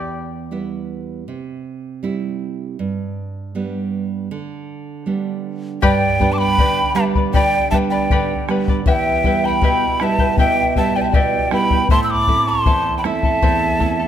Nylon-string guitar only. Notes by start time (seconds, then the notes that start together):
Already playing: E2
0.51 G3 B3 E4
1.28 C3
2.03 G3 C4 E4
2.79 G2
3.55 G3 B3 D4
4.31 D3
5.06 G3 B3 D4
5.82 G2
6.20 G3 B3 D4
6.58 D3
6.94 G3 B3 D4
7.33 D3
7.71 G3 B3 D4
8.11 D3
8.48 G3 B3 D4
8.86 E2
9.24 G3 B3 E4
9.62 B2
10.00 G3 B3 E4
10.38 B2
10.76 G3 B3 E4
11.14 B2
11.51 G3 B3 E4
11.90 A2
12.28 A3 C4 E4
12.67 E2
13.04 A3 C4 E4
13.42 E2
13.79 A3 C4 E4